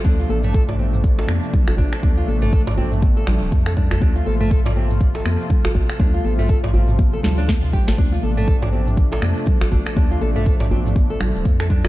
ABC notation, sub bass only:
X:1
M:4/4
L:1/16
Q:"Swing 16ths" 1/4=121
K:Dm
V:1 name="Sub bass" clef=bass
D,,2 A,,,8 F,, z4 z | D,,2 A,,,8 A,,, D,,, F,,4 | D,,2 A,,,8 F,, z4 z | D,,2 A,,,8 D,,4 A,,,2 |
D,,2 A,,,8 F,, z4 z | D,,2 A,,,8 A,,, D,,, F,,4 |]